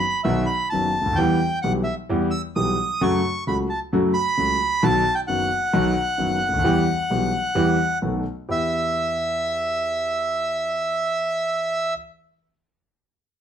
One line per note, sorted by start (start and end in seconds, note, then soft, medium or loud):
0.00 0.21 B5 loud
0.24 0.44 B1 medium
0.24 0.44 B2 medium
0.24 0.44 D#3 medium
0.24 0.44 F#3 medium
0.24 0.44 B3 medium
0.24 0.44 F#4 medium
0.24 0.46 E5 medium
0.46 0.68 B5 medium
0.70 0.91 F#1 medium
0.70 0.92 F#2 medium
0.70 0.91 D#3 soft
0.70 0.92 F#3 soft
0.70 0.92 B3 soft
0.70 0.91 F#4 soft
0.70 1.18 A5 medium
1.01 1.06 C#2 medium
1.05 1.11 D2 medium
1.13 1.18 D#2 medium
1.13 1.59 G5 medium
1.18 1.37 E2 medium
1.18 1.37 E3 medium
1.18 1.37 G3 medium
1.18 1.37 B3 medium
1.18 1.37 G4 medium
1.62 1.83 B1 medium
1.62 1.83 B2 medium
1.62 1.83 E3 soft
1.62 1.83 G3 soft
1.62 1.83 B3 soft
1.62 1.83 G4 medium
1.62 1.73 F#5 medium
1.84 1.95 E5 medium
2.09 2.29 E2 medium
2.09 2.29 E3 medium
2.09 2.29 G3 medium
2.09 2.29 B3 medium
2.09 2.29 G4 medium
2.31 2.41 E6 loud
2.56 2.75 B1 medium
2.56 2.75 B2 medium
2.56 2.75 E3 soft
2.56 2.75 G3 soft
2.56 2.75 B3 soft
2.56 2.75 G4 medium
2.56 3.02 D#6 loud
3.01 3.20 F#2 loud
3.01 3.20 C#3 medium
3.01 3.20 F#3 medium
3.01 3.20 A3 medium
3.01 3.20 F#4 medium
3.01 3.44 C#6 loud
3.47 3.66 C#2 medium
3.47 3.66 C#3 medium
3.47 3.66 F#3 soft
3.47 3.66 A3 soft
3.47 3.66 F#4 medium
3.47 3.58 B5 medium
3.70 3.80 A5 medium
3.93 4.11 F#2 medium
3.93 4.12 C#3 medium
3.93 4.12 F#3 medium
3.93 4.12 A3 medium
3.93 4.12 F#4 medium
4.14 4.84 B5 loud
4.38 4.57 C#2 medium
4.38 4.57 C#3 medium
4.38 4.57 F#3 soft
4.38 4.57 A3 soft
4.38 4.57 F#4 medium
4.83 5.02 B1 medium
4.83 5.02 B2 medium
4.83 5.02 D#3 medium
4.83 5.02 F#3 medium
4.83 5.02 B3 medium
4.83 5.02 F#4 medium
4.83 5.15 A5 loud
5.15 5.20 G5 medium
5.27 5.47 F#1 medium
5.27 5.47 F#2 medium
5.27 5.47 D#3 soft
5.27 5.47 F#3 soft
5.27 5.48 B3 soft
5.27 5.47 F#4 medium
5.27 7.98 F#5 loud
5.73 5.92 B1 medium
5.73 5.92 B2 medium
5.73 5.92 D#3 medium
5.73 5.93 F#3 medium
5.73 5.92 B3 medium
5.73 5.93 F#4 medium
6.18 6.38 F#1 medium
6.18 6.38 F#2 medium
6.18 6.38 D#3 medium
6.18 6.38 F#3 soft
6.18 6.38 B3 soft
6.18 6.38 F#4 medium
6.49 6.54 C#2 medium
6.53 6.59 D2 medium
6.58 6.64 D#2 medium
6.64 6.84 E2 medium
6.64 6.84 E3 medium
6.64 6.84 G3 medium
6.64 6.84 B3 medium
6.64 6.84 G4 medium
7.10 7.30 B1 medium
7.10 7.30 B2 medium
7.10 7.30 E3 soft
7.10 7.30 G3 soft
7.10 7.30 B3 soft
7.10 7.30 G4 medium
7.55 7.75 E2 medium
7.55 7.75 E3 medium
7.55 7.75 G3 medium
7.55 7.75 B3 medium
7.55 7.75 G4 medium
8.02 8.22 B1 medium
8.02 8.22 B2 medium
8.02 8.22 D#3 soft
8.02 8.22 A3 soft
8.02 8.22 B3 soft
8.02 8.22 F#4 medium
8.49 11.91 E2 medium
8.49 11.91 B3 medium
8.49 11.92 E4 medium
8.49 11.91 G4 medium
8.49 11.94 E5 loud